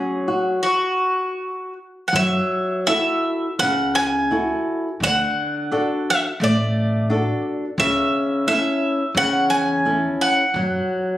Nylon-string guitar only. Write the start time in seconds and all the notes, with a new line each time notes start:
Already playing: F#3 C#4
0.28 F#4
2.14 F#3
2.88 E4 F#4 A4
3.61 C#3
4.31 E4 F#4 A4
5.02 D3
5.72 D4 F#4 A4
6.41 A3
7.10 D4 F#4 A4
7.79 C#3
8.47 C#4 E4 A4
9.17 C#3
9.85 C#4 E4 A4
10.56 F#3